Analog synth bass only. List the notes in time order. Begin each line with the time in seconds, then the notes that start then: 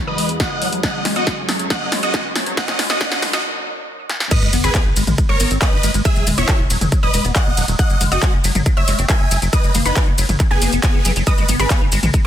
4.42 G#1
4.53 G#1
4.64 G#1
4.86 G#1
4.96 G#1
5.07 A#1
5.29 G#1
5.40 G#1
5.51 G#1
5.73 G#1
5.83 G#1
5.94 G#1
6.16 E1
6.27 E1
6.38 E1
6.60 E1
6.70 E1
6.81 F#1
7.03 E1
7.14 E1
7.25 E1
7.46 E1
7.57 E1
7.68 E1
7.90 F#1
8.01 F#1
8.12 F#1
8.33 F#1
8.44 F#1
8.55 G#1
8.77 F#1
8.88 F#1
8.99 F#1
9.20 F#1
9.31 F#1
9.42 F#1
9.64 F#1
9.75 F#1
9.86 F#1
10.07 F#1
10.18 F#1
10.29 G#1
10.51 F#1
10.62 F#1
10.73 F#1
10.94 F#1
11.05 F#1
11.16 F#1
11.38 G#1
11.49 G#1
11.59 G#1
11.81 G#1
11.92 G#1
12.03 A#1